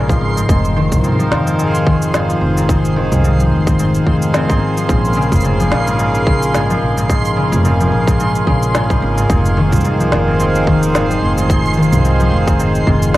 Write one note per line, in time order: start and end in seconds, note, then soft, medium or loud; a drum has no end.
0.00 0.19 A#1 medium
0.00 0.35 G#2 medium
0.00 0.49 C#3 medium
0.00 0.49 G#3 medium
0.00 13.17 F4 medium
0.00 1.94 A#4 medium
0.00 13.17 C6 medium
0.09 0.54 F3 medium
0.09 kick loud
0.09 shaker soft
0.21 0.45 G#1 medium
0.37 0.48 G#2 medium
0.37 shaker medium
0.49 0.88 F1 medium
0.49 1.03 G#2 medium
0.49 4.89 D#3 medium
0.49 kick loud
0.49 shaker medium
0.55 5.62 C4 medium
0.65 shaker soft
0.76 1.85 D#3 loud
0.92 1.29 C2 medium
0.92 kick medium
0.92 mid tom soft
0.92 shaker medium
0.95 mid tom soft
0.98 mid tom soft
1.01 mid tom soft
1.04 1.45 G#2 medium
1.04 mid tom soft
1.04 shaker soft
1.08 mid tom soft
1.12 mid tom soft
1.16 1.92 F3 medium
1.16 mid tom medium
1.16 shaker soft
1.31 2.39 F1 medium
1.31 snare medium
1.47 1.58 G#2 medium
1.47 shaker medium
1.59 2.13 G#2 medium
1.59 shaker medium
1.65 13.17 G#4 medium
1.75 shaker soft
1.86 2.95 D#3 medium
1.86 kick loud
2.02 shaker medium
2.14 2.56 G#2 medium
2.14 snare medium
2.14 shaker medium
2.29 3.02 F3 medium
2.29 shaker soft
2.41 3.08 F1 medium
2.57 2.68 G#2 medium
2.57 shaker medium
2.69 3.23 G#2 medium
2.69 kick loud
2.69 shaker medium
2.85 shaker soft
2.96 4.94 D#3 medium
3.12 3.49 C2 medium
3.12 mid tom medium
3.12 shaker medium
3.24 3.66 G#2 medium
3.24 shaker soft
3.40 4.76 F3 medium
3.40 shaker soft
3.52 4.04 F1 medium
3.67 3.78 G#2 medium
3.67 kick medium
3.67 shaker medium
3.79 4.05 G#2 medium
3.79 shaker medium
3.95 shaker soft
4.07 4.61 F1 medium
4.07 4.48 G#2 medium
4.07 kick medium
4.22 shaker medium
4.34 5.23 C4 medium
4.34 snare medium
4.34 shaker medium
4.49 4.88 G#2 medium
4.49 kick loud
4.49 shaker soft
4.61 4.75 G#1 medium
4.77 4.94 F3 medium
4.77 shaker medium
4.88 5.28 A#1 medium
4.88 5.22 G#2 medium
4.88 9.29 C#3 medium
4.88 kick loud
4.88 shaker medium
5.05 11.07 A#3 medium
5.05 shaker soft
5.13 5.49 C#3 loud
5.13 shaker soft
5.22 shaker soft
5.32 5.69 F1 medium
5.32 kick soft
5.32 mid tom medium
5.32 shaker medium
5.35 shaker soft
5.40 5.86 G#2 medium
5.40 shaker soft
5.44 shaker soft
5.60 6.32 F3 medium
5.60 shaker soft
5.71 6.79 A#1 medium
5.71 snare medium
5.87 5.98 G#2 medium
5.87 shaker medium
5.99 6.32 G#2 medium
5.99 shaker medium
6.15 shaker soft
6.27 6.60 C#3 medium
6.27 kick loud
6.43 shaker medium
6.54 6.96 G#2 medium
6.54 snare medium
6.54 shaker medium
6.70 7.42 F3 medium
6.70 shaker soft
6.82 7.49 A#1 medium
6.97 7.08 G#2 medium
6.97 shaker medium
7.09 7.42 G#2 medium
7.09 kick medium
7.09 shaker medium
7.25 shaker soft
7.37 7.70 C#3 medium
7.52 7.89 F1 loud
7.52 mid tom medium
7.52 shaker medium
7.65 8.06 G#2 medium
7.65 shaker soft
7.80 8.52 F3 medium
7.80 shaker soft
7.92 8.44 A#1 medium
8.07 8.19 G#2 medium
8.07 kick medium
8.07 shaker medium
8.20 8.52 G#2 medium
8.20 shaker medium
8.35 shaker soft
8.47 8.99 A#1 medium
8.47 8.80 C#3 medium
8.47 kick soft
8.63 shaker medium
8.75 9.16 G#2 medium
8.75 snare medium
8.75 shaker soft
8.90 9.35 F3 medium
8.90 kick medium
8.90 shaker soft
9.02 9.26 G#1 medium
9.18 9.28 G#2 medium
9.18 shaker medium
9.30 9.69 F1 medium
9.30 9.83 G#2 medium
9.30 13.17 D#3 medium
9.30 kick loud
9.30 shaker medium
9.45 shaker soft
9.57 10.66 D#3 medium
9.68 13.17 C4 medium
9.73 10.09 C2 medium
9.73 kick medium
9.73 mid tom medium
9.73 shaker medium
9.76 shaker soft
9.81 shaker soft
9.85 10.26 G#2 medium
9.85 shaker soft
10.00 10.72 F3 medium
10.00 shaker soft
10.12 11.19 F1 medium
10.12 snare medium
10.28 10.38 G#2 medium
10.39 10.94 G#2 medium
10.39 shaker medium
10.55 shaker soft
10.67 11.76 D#3 medium
10.67 kick medium
10.83 shaker medium
10.95 11.37 G#2 medium
10.95 snare medium
10.95 shaker medium
11.10 11.83 F3 medium
11.10 shaker soft
11.22 11.89 F1 medium
11.38 11.49 G#2 medium
11.38 shaker medium
11.50 12.03 G#2 medium
11.50 kick loud
11.50 shaker soft
11.65 shaker soft
11.73 shaker soft
11.77 13.17 D#3 loud
11.83 shaker soft
11.92 12.29 C2 medium
11.92 mid tom medium
11.92 shaker medium
12.05 12.46 G#2 medium
12.05 shaker soft
12.20 13.13 F3 medium
12.20 shaker soft
12.32 12.84 F1 medium
12.47 12.58 G#2 medium
12.47 kick medium
12.47 shaker medium
12.59 12.86 G#2 medium
12.59 shaker medium
12.75 shaker soft
12.87 13.17 F1 medium
12.87 13.17 G#2 medium
12.87 kick soft
12.87 mid tom medium
13.02 shaker medium